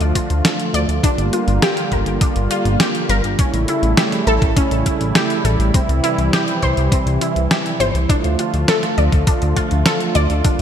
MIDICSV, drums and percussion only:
0, 0, Header, 1, 2, 480
1, 0, Start_track
1, 0, Key_signature, -1, "minor"
1, 0, Tempo, 588235
1, 845, Time_signature, 4, 2, 24, 8
1, 8663, End_track
2, 0, Start_track
2, 0, Title_t, "Drums"
2, 5, Note_on_c, 9, 42, 40
2, 86, Note_off_c, 9, 42, 0
2, 124, Note_on_c, 9, 36, 61
2, 126, Note_on_c, 9, 42, 71
2, 206, Note_off_c, 9, 36, 0
2, 208, Note_off_c, 9, 42, 0
2, 246, Note_on_c, 9, 42, 39
2, 327, Note_off_c, 9, 42, 0
2, 365, Note_on_c, 9, 38, 116
2, 365, Note_on_c, 9, 42, 100
2, 447, Note_off_c, 9, 38, 0
2, 447, Note_off_c, 9, 42, 0
2, 486, Note_on_c, 9, 42, 42
2, 568, Note_off_c, 9, 42, 0
2, 606, Note_on_c, 9, 42, 70
2, 688, Note_off_c, 9, 42, 0
2, 726, Note_on_c, 9, 42, 40
2, 808, Note_off_c, 9, 42, 0
2, 844, Note_on_c, 9, 36, 118
2, 847, Note_on_c, 9, 42, 94
2, 926, Note_off_c, 9, 36, 0
2, 929, Note_off_c, 9, 42, 0
2, 966, Note_on_c, 9, 42, 41
2, 1047, Note_off_c, 9, 42, 0
2, 1085, Note_on_c, 9, 42, 67
2, 1166, Note_off_c, 9, 42, 0
2, 1205, Note_on_c, 9, 42, 39
2, 1287, Note_off_c, 9, 42, 0
2, 1325, Note_on_c, 9, 38, 120
2, 1325, Note_on_c, 9, 42, 95
2, 1407, Note_off_c, 9, 38, 0
2, 1407, Note_off_c, 9, 42, 0
2, 1444, Note_on_c, 9, 42, 43
2, 1526, Note_off_c, 9, 42, 0
2, 1564, Note_on_c, 9, 36, 64
2, 1564, Note_on_c, 9, 42, 37
2, 1646, Note_off_c, 9, 36, 0
2, 1646, Note_off_c, 9, 42, 0
2, 1683, Note_on_c, 9, 42, 41
2, 1765, Note_off_c, 9, 42, 0
2, 1804, Note_on_c, 9, 42, 93
2, 1805, Note_on_c, 9, 36, 122
2, 1886, Note_off_c, 9, 36, 0
2, 1886, Note_off_c, 9, 42, 0
2, 1924, Note_on_c, 9, 42, 40
2, 2006, Note_off_c, 9, 42, 0
2, 2045, Note_on_c, 9, 42, 70
2, 2127, Note_off_c, 9, 42, 0
2, 2166, Note_on_c, 9, 42, 38
2, 2247, Note_off_c, 9, 42, 0
2, 2284, Note_on_c, 9, 38, 127
2, 2284, Note_on_c, 9, 42, 97
2, 2366, Note_off_c, 9, 38, 0
2, 2366, Note_off_c, 9, 42, 0
2, 2405, Note_on_c, 9, 42, 39
2, 2487, Note_off_c, 9, 42, 0
2, 2525, Note_on_c, 9, 42, 68
2, 2607, Note_off_c, 9, 42, 0
2, 2644, Note_on_c, 9, 42, 41
2, 2726, Note_off_c, 9, 42, 0
2, 2764, Note_on_c, 9, 42, 89
2, 2765, Note_on_c, 9, 36, 123
2, 2846, Note_off_c, 9, 42, 0
2, 2847, Note_off_c, 9, 36, 0
2, 2885, Note_on_c, 9, 42, 42
2, 2967, Note_off_c, 9, 42, 0
2, 3004, Note_on_c, 9, 42, 66
2, 3085, Note_off_c, 9, 42, 0
2, 3125, Note_on_c, 9, 42, 40
2, 3206, Note_off_c, 9, 42, 0
2, 3243, Note_on_c, 9, 38, 120
2, 3243, Note_on_c, 9, 42, 95
2, 3324, Note_off_c, 9, 38, 0
2, 3324, Note_off_c, 9, 42, 0
2, 3365, Note_on_c, 9, 38, 36
2, 3365, Note_on_c, 9, 42, 42
2, 3447, Note_off_c, 9, 38, 0
2, 3447, Note_off_c, 9, 42, 0
2, 3484, Note_on_c, 9, 42, 36
2, 3566, Note_off_c, 9, 42, 0
2, 3605, Note_on_c, 9, 36, 113
2, 3606, Note_on_c, 9, 42, 40
2, 3687, Note_off_c, 9, 36, 0
2, 3688, Note_off_c, 9, 42, 0
2, 3725, Note_on_c, 9, 36, 119
2, 3726, Note_on_c, 9, 42, 89
2, 3807, Note_off_c, 9, 36, 0
2, 3807, Note_off_c, 9, 42, 0
2, 3846, Note_on_c, 9, 42, 39
2, 3928, Note_off_c, 9, 42, 0
2, 3965, Note_on_c, 9, 36, 65
2, 3966, Note_on_c, 9, 42, 70
2, 4047, Note_off_c, 9, 36, 0
2, 4048, Note_off_c, 9, 42, 0
2, 4086, Note_on_c, 9, 42, 40
2, 4168, Note_off_c, 9, 42, 0
2, 4204, Note_on_c, 9, 38, 127
2, 4204, Note_on_c, 9, 42, 96
2, 4286, Note_off_c, 9, 38, 0
2, 4286, Note_off_c, 9, 42, 0
2, 4326, Note_on_c, 9, 42, 40
2, 4408, Note_off_c, 9, 42, 0
2, 4447, Note_on_c, 9, 42, 69
2, 4528, Note_off_c, 9, 42, 0
2, 4568, Note_on_c, 9, 42, 39
2, 4650, Note_off_c, 9, 42, 0
2, 4685, Note_on_c, 9, 36, 123
2, 4687, Note_on_c, 9, 42, 91
2, 4767, Note_off_c, 9, 36, 0
2, 4768, Note_off_c, 9, 42, 0
2, 4809, Note_on_c, 9, 42, 37
2, 4890, Note_off_c, 9, 42, 0
2, 4927, Note_on_c, 9, 42, 66
2, 5009, Note_off_c, 9, 42, 0
2, 5047, Note_on_c, 9, 42, 37
2, 5128, Note_off_c, 9, 42, 0
2, 5167, Note_on_c, 9, 38, 124
2, 5167, Note_on_c, 9, 42, 88
2, 5249, Note_off_c, 9, 38, 0
2, 5249, Note_off_c, 9, 42, 0
2, 5286, Note_on_c, 9, 42, 38
2, 5368, Note_off_c, 9, 42, 0
2, 5405, Note_on_c, 9, 36, 64
2, 5406, Note_on_c, 9, 42, 36
2, 5487, Note_off_c, 9, 36, 0
2, 5488, Note_off_c, 9, 42, 0
2, 5527, Note_on_c, 9, 42, 38
2, 5608, Note_off_c, 9, 42, 0
2, 5645, Note_on_c, 9, 36, 117
2, 5647, Note_on_c, 9, 42, 90
2, 5727, Note_off_c, 9, 36, 0
2, 5729, Note_off_c, 9, 42, 0
2, 5768, Note_on_c, 9, 42, 37
2, 5849, Note_off_c, 9, 42, 0
2, 5887, Note_on_c, 9, 42, 64
2, 5968, Note_off_c, 9, 42, 0
2, 6008, Note_on_c, 9, 42, 35
2, 6089, Note_off_c, 9, 42, 0
2, 6128, Note_on_c, 9, 38, 127
2, 6128, Note_on_c, 9, 42, 91
2, 6210, Note_off_c, 9, 38, 0
2, 6210, Note_off_c, 9, 42, 0
2, 6249, Note_on_c, 9, 42, 40
2, 6331, Note_off_c, 9, 42, 0
2, 6368, Note_on_c, 9, 42, 64
2, 6449, Note_off_c, 9, 42, 0
2, 6487, Note_on_c, 9, 42, 37
2, 6569, Note_off_c, 9, 42, 0
2, 6605, Note_on_c, 9, 36, 119
2, 6607, Note_on_c, 9, 42, 86
2, 6687, Note_off_c, 9, 36, 0
2, 6689, Note_off_c, 9, 42, 0
2, 6726, Note_on_c, 9, 42, 37
2, 6808, Note_off_c, 9, 42, 0
2, 6846, Note_on_c, 9, 42, 60
2, 6928, Note_off_c, 9, 42, 0
2, 6966, Note_on_c, 9, 42, 36
2, 7047, Note_off_c, 9, 42, 0
2, 7084, Note_on_c, 9, 38, 114
2, 7084, Note_on_c, 9, 42, 85
2, 7166, Note_off_c, 9, 38, 0
2, 7166, Note_off_c, 9, 42, 0
2, 7205, Note_on_c, 9, 38, 37
2, 7205, Note_on_c, 9, 42, 38
2, 7287, Note_off_c, 9, 38, 0
2, 7287, Note_off_c, 9, 42, 0
2, 7326, Note_on_c, 9, 42, 35
2, 7407, Note_off_c, 9, 42, 0
2, 7445, Note_on_c, 9, 36, 101
2, 7446, Note_on_c, 9, 42, 37
2, 7527, Note_off_c, 9, 36, 0
2, 7527, Note_off_c, 9, 42, 0
2, 7565, Note_on_c, 9, 36, 118
2, 7565, Note_on_c, 9, 42, 87
2, 7647, Note_off_c, 9, 36, 0
2, 7647, Note_off_c, 9, 42, 0
2, 7685, Note_on_c, 9, 42, 38
2, 7766, Note_off_c, 9, 42, 0
2, 7805, Note_on_c, 9, 36, 59
2, 7805, Note_on_c, 9, 42, 66
2, 7886, Note_off_c, 9, 36, 0
2, 7886, Note_off_c, 9, 42, 0
2, 7923, Note_on_c, 9, 42, 35
2, 8005, Note_off_c, 9, 42, 0
2, 8043, Note_on_c, 9, 38, 118
2, 8043, Note_on_c, 9, 42, 90
2, 8124, Note_off_c, 9, 38, 0
2, 8124, Note_off_c, 9, 42, 0
2, 8164, Note_on_c, 9, 42, 38
2, 8246, Note_off_c, 9, 42, 0
2, 8282, Note_on_c, 9, 42, 62
2, 8364, Note_off_c, 9, 42, 0
2, 8403, Note_on_c, 9, 42, 37
2, 8485, Note_off_c, 9, 42, 0
2, 8523, Note_on_c, 9, 42, 86
2, 8524, Note_on_c, 9, 36, 121
2, 8605, Note_off_c, 9, 42, 0
2, 8606, Note_off_c, 9, 36, 0
2, 8663, End_track
0, 0, End_of_file